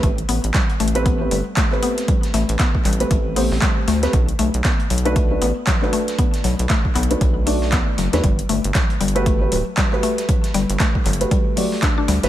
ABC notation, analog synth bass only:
X:1
M:4/4
L:1/16
Q:"Swing 16ths" 1/4=117
K:Ador
V:1 name="Analog synth bass" clef=bass
A,,, z A,,, A,,, z2 A,,,4 G,,, z4 z | z2 A,,, A,,, z2 A,,, z A,,,3 A,,, z2 D,, z | B,,, z B,,, B,,, z2 B,,,4 A,,, z4 z | z2 B,,, B,,, z2 B,,, z B,,,4- B,,, z F,,, E,, |
G,,, z G,,, G,,, z2 G,,,4 D,,, z4 z | z2 G,,, G,,, z2 G,,, z6 z D,, G,,, |]